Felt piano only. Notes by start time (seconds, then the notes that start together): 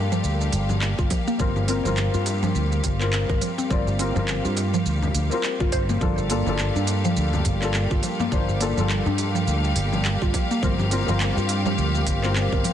Already playing: A#3 D4 F4 A4
1.39 A#3 C4 F4 A#4
1.67 A#3 C4 F4 A#4
1.83 A#3 C4 F4
1.87 A#4
2.99 A#3 C4 F4 A#4
3.70 A#3 C4 F4 D5
3.99 A#3 C4 F4 A#4
4.14 A#3 C4 F4
4.18 A#4
5.30 A#3 C4 F4
5.34 A#4
6.00 A#3 D4 F4 A4
6.29 A#3 D4 F4 A4
6.45 A#3 D4 F4
6.49 A4
7.60 A#3 D4 F4
7.64 A4
8.31 A#3 D4 F4 C5
8.60 A#3 D4 F4 A4
8.76 A#3 D4 F4 A4
10.62 A#3 C4 F4 A#4
10.91 A#3 C4 F4 A#4
11.06 A#3 C4 F4
11.10 A#4
12.22 A#3 C4 F4 A#4